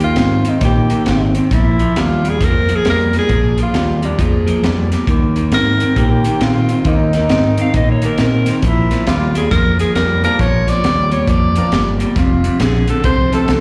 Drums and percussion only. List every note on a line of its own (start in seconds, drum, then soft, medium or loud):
0.00 closed hi-hat medium
0.16 snare loud
0.16 closed hi-hat medium
0.45 closed hi-hat medium
0.61 kick loud
0.61 snare soft
0.61 closed hi-hat medium
0.90 closed hi-hat medium
1.06 snare loud
1.06 closed hi-hat medium
1.35 closed hi-hat medium
1.51 kick loud
1.51 snare soft
1.51 closed hi-hat medium
1.79 closed hi-hat medium
1.96 snare loud
1.96 closed hi-hat medium
2.25 closed hi-hat medium
2.41 kick loud
2.41 snare soft
2.41 closed hi-hat medium
2.69 closed hi-hat medium
2.85 snare loud
2.85 closed hi-hat medium
3.13 snare soft
3.13 closed hi-hat medium
3.29 kick loud
3.29 closed hi-hat medium
3.58 closed hi-hat medium
3.74 snare loud
3.74 closed hi-hat medium
4.03 closed hi-hat medium
4.19 kick loud
4.19 closed hi-hat medium
4.48 closed hi-hat medium
4.64 snare loud
4.64 closed hi-hat medium
4.92 snare soft
4.92 closed hi-hat medium
5.07 kick loud
5.07 closed hi-hat medium
5.36 closed hi-hat medium
5.52 snare loud
5.52 closed hi-hat medium
5.80 closed hi-hat medium
5.96 kick loud
5.96 closed hi-hat medium
6.24 closed hi-hat medium
6.41 snare loud
6.41 closed hi-hat medium
6.69 closed hi-hat medium
6.85 kick loud
6.85 closed hi-hat medium
7.13 snare soft
7.13 closed hi-hat medium
7.29 snare loud
7.29 closed hi-hat medium
7.58 closed hi-hat medium
7.74 kick loud
7.74 closed hi-hat medium
8.02 closed hi-hat medium
8.18 snare loud
8.18 closed hi-hat medium
8.46 snare soft
8.46 closed hi-hat medium
8.62 kick loud
8.62 closed hi-hat medium
8.91 snare soft
8.91 closed hi-hat medium
9.07 snare loud
9.07 closed hi-hat medium
9.35 closed hi-hat medium
9.51 kick loud
9.51 snare soft
9.51 closed hi-hat medium
9.79 closed hi-hat medium
9.95 snare medium
9.95 closed hi-hat medium
10.24 closed hi-hat medium
10.39 kick loud
10.39 snare soft
10.39 closed hi-hat medium
10.68 snare soft
10.68 closed hi-hat medium
10.84 snare loud
10.84 closed hi-hat medium
11.11 closed hi-hat medium
11.27 kick loud
11.27 closed hi-hat medium
11.56 closed hi-hat medium
11.72 snare loud
11.72 closed hi-hat medium
12.00 closed hi-hat medium
12.16 kick loud
12.16 snare soft
12.16 closed hi-hat medium
12.44 closed hi-hat medium
12.60 snare loud
12.60 closed hi-hat medium
12.88 closed hi-hat medium
13.04 kick loud
13.04 closed hi-hat medium
13.33 closed hi-hat medium
13.48 snare loud
13.48 closed hi-hat medium